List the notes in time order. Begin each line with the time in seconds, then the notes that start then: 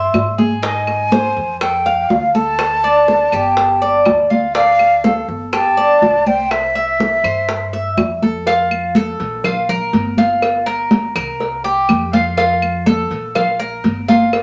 Already playing: E5 C6
0.13 G#2, high bongo, low bongo, high conga, claves
0.38 G#4, high conga
0.63 D#4 G#5, high bongo, high conga
0.87 high bongo, high conga, claves
1.12 C5, high bongo, high conga
1.37 F2, high bongo, high conga
1.61 A4 G5, high bongo, high conga, claves
1.85 F5, high bongo, high conga
2.09 D2 F5, high bongo, low bongo, high conga
2.34 A4 A5, high conga
2.59 high bongo, high conga, claves
2.84 D5, high bongo, high conga
3.08 high bongo, high conga
3.32 G1 G4, high bongo, high conga, claves
3.57 high bongo, high conga
3.81 D5, high bongo, high conga
4.05 D2, high bongo, low bongo, high conga, claves
4.30 F4, high conga
4.55 D4 F5, high bongo, high conga
4.79 high bongo, high conga, claves
5.04 A4, high bongo, high conga
5.28 G1, high bongo, high conga
5.53 G4 A5, high bongo, high conga, claves
5.77 D5, high bongo, high conga
6.02 C2, high bongo, low bongo, high conga
6.26 C5 G5, high conga
6.51 E5, high bongo, high conga, claves
6.75 E5, high bongo, high conga
7.00 high bongo, high conga
7.24 G2 C5, high bongo, high conga, claves
7.49 high bongo, high conga
7.73 E5, high bongo, high conga
7.97 F2, high bongo, low bongo, high conga, claves
8.22 A4, high conga
8.47 F4, cowbell, high conga
8.71 high conga, claves
8.95 A4, cowbell, high conga
9.20 A#1, cowbell, high conga
9.44 F4, cowbell, high conga, low conga, claves
9.69 A#4, high conga, low conga
9.93 G1, cowbell, high conga
10.17 F4, cowbell, high conga
10.42 cowbell, high conga, claves
10.66 A#4, cowbell, high conga
10.91 cowbell, high conga
11.15 C2 A#4, cowbell, claves
11.40 cowbell, high conga
11.64 G4, high conga
11.89 F2, cowbell, high conga, claves
12.13 F4, cowbell, high conga
12.37 F4, cowbell, high conga
12.62 high conga, claves
12.86 A4, cowbell, high conga
13.10 A#1, cowbell, high conga
13.35 F4, cowbell, high conga, low conga, claves
13.60 A#4, high conga
13.84 G1, cowbell, high conga
14.08 F4, cowbell, high conga
14.33 cowbell, high conga, claves